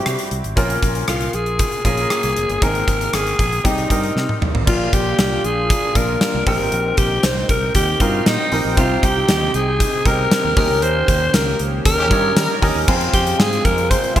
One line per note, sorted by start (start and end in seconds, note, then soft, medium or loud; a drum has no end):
0.00 0.59 C3 medium
0.00 0.59 G3 medium
0.00 0.59 C4 medium
0.00 0.58 E4 medium
0.00 0.59 F#4 medium
0.00 0.28 G4 medium
0.00 0.58 G4 medium
0.06 0.16 C3 medium
0.06 cross-stick medium
0.06 closed hi-hat medium
0.19 closed hi-hat medium
0.31 0.41 C2 medium
0.31 closed hi-hat medium
0.44 0.54 G#1 medium
0.44 closed hi-hat soft
0.56 0.76 A#1 loud
0.56 1.30 A#2 medium
0.56 1.43 A#3 medium
0.56 1.43 C#4 medium
0.56 1.43 F4 medium
0.56 1.43 A#4 medium
0.56 kick loud
0.56 closed hi-hat medium
0.70 closed hi-hat medium
0.82 1.02 A#1 medium
0.82 kick medium
0.82 closed hi-hat medium
0.95 closed hi-hat medium
1.08 1.27 C2 medium
1.08 1.36 F4 medium
1.08 cross-stick medium
1.08 closed hi-hat medium
1.21 closed hi-hat soft
1.33 1.63 A#1 medium
1.33 1.85 G#4 medium
1.33 closed hi-hat medium
1.46 closed hi-hat soft
1.59 kick medium
1.59 closed hi-hat medium
1.72 closed hi-hat soft
1.85 2.04 A#1 medium
1.85 2.50 A#3 medium
1.85 2.50 C#4 medium
1.85 2.50 F4 medium
1.85 2.65 G#4 loud
1.85 2.50 A#4 medium
1.85 kick medium
1.85 closed hi-hat medium
1.97 closed hi-hat soft
2.10 cross-stick medium
2.10 closed hi-hat medium
2.23 2.33 C2 medium
2.23 closed hi-hat medium
2.36 2.46 F1 medium
2.36 closed hi-hat medium
2.49 2.59 G1 medium
2.49 closed hi-hat soft
2.62 2.82 G#1 medium
2.62 3.35 G#2 medium
2.62 3.48 A#3 medium
2.62 3.48 C4 medium
2.62 3.49 D#4 medium
2.62 3.49 G#4 medium
2.62 3.16 A#4 loud
2.62 kick loud
2.62 closed hi-hat medium
2.75 closed hi-hat medium
2.88 3.07 G#1 medium
2.88 kick medium
2.88 closed hi-hat medium
3.01 closed hi-hat medium
3.13 3.33 G#1 medium
3.13 3.67 G#4 medium
3.13 cross-stick medium
3.13 closed hi-hat medium
3.27 closed hi-hat soft
3.39 3.58 A#1 medium
3.39 kick medium
3.39 closed hi-hat medium
3.52 closed hi-hat soft
3.64 3.84 C2 medium
3.64 4.38 C3 medium
3.64 3.86 G3 medium
3.64 3.86 C4 medium
3.64 3.86 D#4 medium
3.64 4.42 D#4 medium
3.64 3.86 G4 medium
3.64 kick medium
3.64 closed hi-hat medium
3.78 closed hi-hat soft
3.89 4.10 G2 medium
3.89 4.54 G3 medium
3.89 4.55 C4 medium
3.89 4.55 D#4 medium
3.89 4.55 A#4 medium
3.89 kick medium
3.89 closed hi-hat medium
4.03 closed hi-hat soft
4.16 4.25 C3 medium
4.16 snare medium
4.29 high tom medium
4.41 4.51 C2 medium
4.41 mid tom medium
4.54 4.64 G#1 medium
4.54 floor tom medium
4.66 4.87 A#1 loud
4.66 5.40 A#2 medium
4.66 5.53 A#3 medium
4.66 6.45 A#3 medium
4.66 5.53 D4 medium
4.66 6.45 D4 medium
4.66 5.53 F4 medium
4.66 6.45 F4 medium
4.66 4.95 F4 medium
4.66 5.53 A#4 medium
4.66 kick loud
4.66 crash medium
4.93 5.12 A#1 medium
4.93 5.46 G4 loud
4.93 kick medium
4.93 closed hi-hat medium
5.19 5.38 C2 medium
5.19 snare loud
5.19 closed hi-hat medium
5.44 5.73 A#1 medium
5.44 5.98 G#4 medium
5.44 closed hi-hat medium
5.70 kick loud
5.70 closed hi-hat medium
5.95 6.15 A#1 medium
5.95 6.38 A#3 medium
5.95 6.38 D4 medium
5.95 6.38 F4 medium
5.95 6.39 A#4 medium
5.95 6.47 A#4 loud
5.95 kick medium
5.95 closed hi-hat medium
6.21 snare loud
6.21 closed hi-hat medium
6.34 6.44 C2 medium
6.46 6.56 A#1 medium
6.46 7.20 A#2 medium
6.46 7.33 C4 medium
6.46 10.53 C4 medium
6.46 10.53 D#4 medium
6.46 7.33 D#4 medium
6.46 7.33 G4 medium
6.46 7.00 A#4 loud
6.46 7.33 A#4 medium
6.46 10.53 G5 medium
6.46 kick loud
6.46 open hi-hat medium
6.60 6.69 G#1 medium
6.72 6.92 A#1 loud
6.72 closed hi-hat medium
6.97 7.17 A#1 medium
6.97 7.26 G4 medium
6.97 kick medium
6.97 closed hi-hat medium
7.23 7.43 C2 medium
7.23 7.50 C5 loud
7.23 snare loud
7.23 closed hi-hat medium
7.49 7.69 C2 medium
7.49 7.74 A#4 medium
7.49 kick medium
7.49 closed hi-hat medium
7.75 7.94 D#2 medium
7.75 8.03 G4 loud
7.75 kick medium
7.75 closed hi-hat medium
8.00 8.20 G2 medium
8.00 8.44 C4 medium
8.00 8.44 D#4 medium
8.00 8.28 F4 medium
8.00 8.07 F#4 soft
8.00 8.44 A#4 medium
8.00 kick medium
8.00 closed hi-hat medium
8.08 8.47 G4 medium
8.26 8.36 A#2 medium
8.26 8.65 D#4 medium
8.26 snare loud
8.26 closed hi-hat medium
8.52 8.62 A#1 medium
8.52 8.73 C4 medium
8.52 8.74 D#4 medium
8.52 8.74 G4 medium
8.52 8.74 A#4 medium
8.52 open hi-hat medium
8.65 8.77 A#1 medium
8.77 8.97 C2 loud
8.77 9.51 C3 medium
8.77 10.55 C3 medium
8.77 9.63 C4 medium
8.77 9.63 D#4 medium
8.77 9.06 F4 loud
8.77 9.64 G4 medium
8.77 9.64 C5 medium
8.77 kick loud
8.77 closed hi-hat medium
9.03 9.22 C2 loud
9.03 9.56 G4 loud
9.03 kick medium
9.03 closed hi-hat medium
9.28 9.48 D#2 medium
9.28 snare loud
9.28 closed hi-hat medium
9.54 9.83 C2 medium
9.54 10.08 G#4 loud
9.54 closed hi-hat medium
9.80 kick loud
9.80 closed hi-hat loud
10.05 10.25 C2 medium
10.05 10.49 C4 medium
10.05 10.49 D#4 medium
10.05 10.49 G4 medium
10.05 10.49 A#4 medium
10.05 10.57 A#4 loud
10.05 kick medium
10.05 closed hi-hat medium
10.31 snare loud
10.31 closed hi-hat medium
10.45 10.54 D#2 medium
10.56 10.67 D#2 loud
10.56 12.85 D#3 medium
10.56 11.30 D#3 medium
10.56 12.85 A#3 medium
10.56 11.43 C#4 medium
10.56 12.85 C#4 medium
10.56 11.43 D#4 medium
10.56 12.85 G4 medium
10.56 11.43 G4 medium
10.56 10.84 A#4 medium
10.56 11.43 A#4 medium
10.56 kick loud
10.56 open hi-hat medium
10.70 10.83 C#2 medium
10.82 11.02 D#2 loud
10.82 11.36 C5 loud
10.82 closed hi-hat medium
11.08 11.28 D#2 medium
11.08 kick medium
11.08 closed hi-hat medium
11.34 11.53 C#2 medium
11.34 11.60 A#4 medium
11.34 snare loud
11.34 closed hi-hat medium
11.34 tambourine medium
11.59 11.79 C#2 medium
11.59 closed hi-hat medium
11.85 12.11 D#2 loud
11.85 12.58 A#4 loud
11.85 kick loud
11.85 closed hi-hat loud
11.98 12.06 D#3 loud
11.98 12.06 C#4 loud
11.98 12.06 G4 loud
12.11 12.30 G2 medium
12.11 12.54 C#4 medium
12.11 12.54 D#4 medium
12.11 12.54 G4 medium
12.11 12.54 C#5 medium
12.11 kick medium
12.11 closed hi-hat medium
12.36 12.46 D#3 loud
12.36 12.73 G3 medium
12.36 12.73 D#4 medium
12.36 12.73 A#4 loud
12.36 snare loud
12.36 closed hi-hat medium
12.36 tambourine medium
12.62 12.72 D#2 medium
12.62 12.83 C#4 medium
12.62 12.84 D#4 medium
12.62 12.84 G4 medium
12.62 12.84 A#4 medium
12.62 kick medium
12.62 open hi-hat medium
12.75 12.85 D#2 medium
12.87 13.07 F2 loud
12.87 14.20 G#3 medium
12.87 14.20 C4 medium
12.87 13.74 C4 medium
12.87 14.20 F4 medium
12.87 13.74 F4 medium
12.87 13.74 G#4 medium
12.87 13.74 C5 loud
12.87 kick loud
12.87 crash medium
13.01 closed hi-hat medium
13.13 13.33 F2 medium
13.13 13.41 G4 medium
13.13 13.37 G5 medium
13.13 kick medium
13.13 closed hi-hat medium
13.27 closed hi-hat medium
13.39 13.58 G#2 loud
13.39 13.66 G#4 loud
13.39 13.65 G#5 medium
13.39 snare loud
13.39 tambourine medium
13.53 closed hi-hat medium
13.65 13.94 F2 medium
13.65 13.92 A#4 loud
13.65 13.90 A#5 medium
13.65 kick medium
13.65 closed hi-hat medium
13.78 closed hi-hat soft
13.90 14.15 C5 loud
13.90 14.16 C6 medium
13.90 kick medium
13.90 closed hi-hat loud
14.04 closed hi-hat soft
14.15 14.20 F2 medium
14.15 14.20 C4 medium
14.15 14.20 F4 loud
14.15 14.20 F4 medium
14.15 14.20 G#4 medium
14.15 14.20 C5 medium
14.15 14.20 F5 medium
14.15 kick medium
14.15 closed hi-hat medium